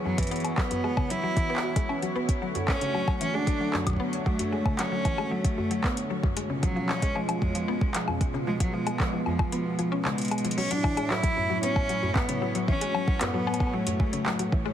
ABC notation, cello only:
X:1
M:4/4
L:1/16
Q:1/4=114
K:F#m
V:1 name="Cello"
F, E,3 B,4 E6 z2 | z4 C4 C D3 F,3 z | A,4 C4 A,6 z2 | z2 F,2 C2 G,8 z2 |
G, F, G,4 ^E,6 G,4 | C D3 E4 C4 B,3 z | C4 B,4 A,6 z2 |]